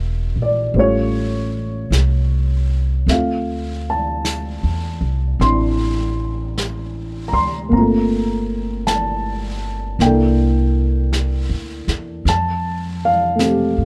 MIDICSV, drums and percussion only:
0, 0, Header, 1, 2, 480
1, 0, Start_track
1, 0, Tempo, 1160542
1, 1278, Time_signature, 4, 2, 24, 8
1, 3193, Tempo, 1132075
1, 5792, End_track
2, 0, Start_track
2, 0, Title_t, "Drums"
2, 313, Note_on_c, 9, 25, 24
2, 795, Note_off_c, 9, 25, 0
2, 795, Note_on_c, 9, 25, 30
2, 795, Note_on_c, 9, 38, 34
2, 795, Note_on_c, 9, 44, 48
2, 836, Note_off_c, 9, 38, 0
2, 836, Note_off_c, 9, 44, 0
2, 1275, Note_off_c, 9, 25, 0
2, 1275, Note_on_c, 9, 25, 23
2, 1275, Note_on_c, 9, 38, 23
2, 1316, Note_off_c, 9, 38, 0
2, 1757, Note_off_c, 9, 25, 0
2, 1757, Note_on_c, 9, 25, 27
2, 1757, Note_on_c, 9, 38, 31
2, 1757, Note_on_c, 9, 44, 43
2, 1798, Note_off_c, 9, 38, 0
2, 1798, Note_off_c, 9, 44, 0
2, 2238, Note_off_c, 9, 25, 0
2, 2238, Note_on_c, 9, 25, 33
2, 2238, Note_on_c, 9, 38, 19
2, 2280, Note_off_c, 9, 38, 0
2, 2720, Note_off_c, 9, 25, 0
2, 2720, Note_on_c, 9, 25, 28
2, 2720, Note_on_c, 9, 38, 36
2, 2720, Note_on_c, 9, 44, 37
2, 2761, Note_off_c, 9, 38, 0
2, 2761, Note_off_c, 9, 44, 0
2, 3193, Note_off_c, 9, 25, 0
2, 3193, Note_on_c, 9, 25, 32
2, 3680, Note_off_c, 9, 25, 0
2, 3680, Note_on_c, 9, 25, 28
2, 3680, Note_on_c, 9, 38, 33
2, 3680, Note_on_c, 9, 44, 36
2, 3723, Note_off_c, 9, 38, 0
2, 3723, Note_off_c, 9, 44, 0
2, 4159, Note_off_c, 9, 25, 0
2, 4159, Note_on_c, 9, 25, 28
2, 4159, Note_on_c, 9, 38, 22
2, 4202, Note_off_c, 9, 38, 0
2, 4637, Note_off_c, 9, 25, 0
2, 4637, Note_on_c, 9, 25, 29
2, 4637, Note_on_c, 9, 38, 32
2, 4637, Note_on_c, 9, 44, 42
2, 4680, Note_off_c, 9, 38, 0
2, 4680, Note_off_c, 9, 44, 0
2, 4956, Note_on_c, 9, 38, 22
2, 4999, Note_off_c, 9, 38, 0
2, 5121, Note_off_c, 9, 25, 0
2, 5121, Note_on_c, 9, 25, 30
2, 5121, Note_on_c, 9, 38, 25
2, 5163, Note_off_c, 9, 38, 0
2, 5598, Note_off_c, 9, 25, 0
2, 5598, Note_on_c, 9, 25, 30
2, 5598, Note_on_c, 9, 38, 34
2, 5598, Note_on_c, 9, 44, 37
2, 5640, Note_off_c, 9, 38, 0
2, 5640, Note_off_c, 9, 44, 0
2, 5792, Note_off_c, 9, 25, 0
2, 5792, End_track
0, 0, End_of_file